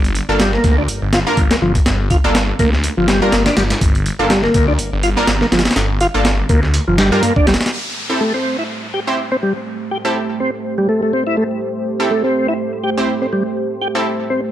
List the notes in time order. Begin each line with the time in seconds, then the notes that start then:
Already playing: G1
0.04 closed hi-hat
0.15 closed hi-hat
0.29 G1 A#3 D4 F4 A4
0.40 G3, snare, closed hi-hat
0.53 A#3, snare
0.64 D2, kick, closed hi-hat
0.78 D4
0.88 G1, closed hi-hat
1.02 G1
1.13 F4, snare, closed hi-hat
1.26 G1 A#3 D4 F4 A#4
1.37 G1, kick, closed hi-hat
1.51 A#3, snare, closed hi-hat
1.62 G1 F3
1.75 kick, closed hi-hat
1.86 G1, snare, closed hi-hat
2.10 F4, kick, closed hi-hat
2.24 G1 A#3 D4 F4 A4
2.35 snare, closed hi-hat
2.59 D2 A#3, kick, closed hi-hat
2.73 snare
2.84 closed hi-hat
2.97 G1 F3
3.08 G3, snare, closed hi-hat
3.22 G1 G3 A#3 D4 F4 A#4
3.32 G1 A#3, snare, closed hi-hat
3.46 D4, snare, closed hi-hat
3.57 G1 G3, snare, closed hi-hat
3.70 snare, closed hi-hat
3.81 G1, kick, closed hi-hat
3.95 closed hi-hat
4.06 closed hi-hat
4.19 G1 A#3 D4 F4 A4
4.30 G3, snare, closed hi-hat
4.43 A#3, snare
4.54 D2, kick, closed hi-hat
4.68 D4
4.79 G1, closed hi-hat
4.92 G1
5.03 F4, closed hi-hat
5.17 G1 A#3 D4 F4 A#4, snare
5.27 G1, snare, closed hi-hat
5.41 A#3, snare
5.52 G1 F3, snare, closed hi-hat
5.59 snare, closed hi-hat
5.65 snare, closed hi-hat
5.71 snare, closed hi-hat
5.76 G1, snare, closed hi-hat
6.01 F4, closed hi-hat
6.14 G1 A#3 D4 F4 A4
6.25 snare, closed hi-hat
6.49 D2 A#3, kick, closed hi-hat
6.63 snare
6.74 closed hi-hat
6.88 G1 F3
6.98 G3, snare, closed hi-hat
7.12 G2 G3 A#3 D4 F4 A#4
7.23 G2 A#3, closed hi-hat
7.36 D4, kick
7.47 G1 G3, snare, closed hi-hat
7.54 snare, closed hi-hat
7.61 snare, closed hi-hat
7.66 snare, closed hi-hat
7.72 A3 G4 C5, downlifter
8.09 C4 E4 G4 A4
8.21 A3
8.34 C4
8.59 E4
8.94 G4
9.07 C4 E4 G4 C5
9.32 C4
9.43 G3
9.91 G4
10.05 C4 E4 G4 A4
10.40 C4
10.78 G3
10.89 A3
11.02 A3
11.13 C4
11.27 E4
11.37 A3
12.00 C4 E4 G4 A4
12.11 A3
12.24 C4
12.48 E4
12.84 G4
12.97 C4 E4 G4 C5
13.22 C4
13.33 G3
13.81 G4
13.95 C4 E4 G4 A4
14.30 C4